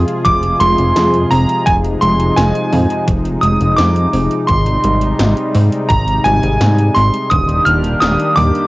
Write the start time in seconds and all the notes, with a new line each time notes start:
Already playing: C3 F3 G#3 C4 F4 G#4
0.08 closed hi-hat
0.25 F1 F3 D6, kick, closed hi-hat
0.43 closed hi-hat
0.60 F1 G#3 C6, closed hi-hat
0.78 F1, closed hi-hat
0.96 F2, snare, closed hi-hat
1.14 closed hi-hat
1.31 F1 C4 A#5, open hi-hat
1.49 closed hi-hat
1.66 F1 F3 D#4 G#5, kick, closed hi-hat
1.84 closed hi-hat
2.01 F1 G#3 C6, closed hi-hat
2.19 closed hi-hat
2.36 F1 G#5, snare, closed hi-hat
2.55 closed hi-hat
2.72 F2 C4, mid tom, open hi-hat
2.90 closed hi-hat
3.08 F1 F3, kick, closed hi-hat
3.25 closed hi-hat
3.41 F1 G#3 D#6, closed hi-hat
3.61 F1, closed hi-hat
3.77 F2 D6, snare, closed hi-hat
3.96 closed hi-hat
4.13 F1 C4, open hi-hat
4.31 closed hi-hat
4.48 G#1 C3 D#3 G3 C6, kick, closed hi-hat
4.66 closed hi-hat
4.84 G#1 G3, closed hi-hat
5.02 closed hi-hat
5.19 G#1, snare, closed hi-hat
5.37 closed hi-hat
5.55 G#2 G#3, open hi-hat
5.72 closed hi-hat
5.89 G#1 D#3 A#5, kick, closed hi-hat
6.08 closed hi-hat
6.24 G#1 G3 G#5, closed hi-hat
6.43 G#1, closed hi-hat
6.61 G#2, snare, closed hi-hat
6.78 closed hi-hat
6.94 G#1 G#3 C6, open hi-hat
7.14 closed hi-hat
7.30 D#1 D3 D#3 G3 A#3 D4 G4 D#6, kick, closed hi-hat
7.49 closed hi-hat
7.65 D#1 D#3 F6, closed hi-hat
7.84 closed hi-hat
8.00 D#1 D#6, snare, closed hi-hat
8.20 closed hi-hat
8.36 D#2 G3 D6, mid tom, open hi-hat
8.55 closed hi-hat